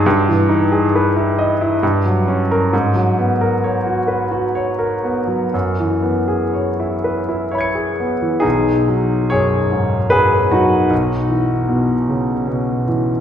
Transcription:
<<
  \new Staff \with { instrumentName = "Grand piano" } { \time 3/4 \key b \major \tempo 4 = 67 r2. | r2. | r2 <e'' b'' gis''' cis''''>4 | <dis' gis'>4 <gis' cis''>4 <gis' b'>8 <dis' fis'>8~ |
<dis' fis'>2~ <dis' fis'>8 r8 | }
  \new Staff \with { instrumentName = "Grand piano" } { \time 3/4 \key b \major g,16 e16 dis'16 gis'16 b'16 e'16 dis''16 e'16 g,16 fis16 des'16 bes'16 | gis,16 fis16 b16 ais'16 cis''16 fis'16 b'16 fis'16 cis''16 ais'16 b16 fis16 | fis,16 e16 b16 gis'16 cis''16 e'16 b'16 e'16 cis''16 gis'16 b16 e16 | b,,8 fis8 fis,8 gis,8 fis,8 fis8 |
b,,8 e8 b,8 cis8 b,8 e8 | }
>>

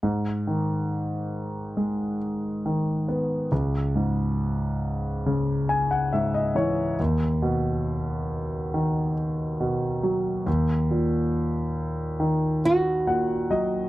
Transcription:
<<
  \new Staff \with { instrumentName = "Nylon-string guitar" } { \time 4/4 \key gis \minor \tempo 4 = 69 r1 | r1 | r1 | r2 r8 fis'4. | }
  \new Staff \with { instrumentName = "Grand piano" } { \time 4/4 \key gis \minor r1 | r2 r8 gis''16 fis''16 e''16 dis''16 cis''8 | r1 | r2. fis''8 dis''8 | }
  \new Staff \with { instrumentName = "Grand piano" } { \clef bass \time 4/4 \key gis \minor gis,8 dis4. gis4 dis8 b8 | cis,8 gis,4. cis4 gis,8 e8 | dis,8 b,4. dis4 b,8 fis8 | dis,8 ais,4. dis4 ais,8 fis8 | }
>>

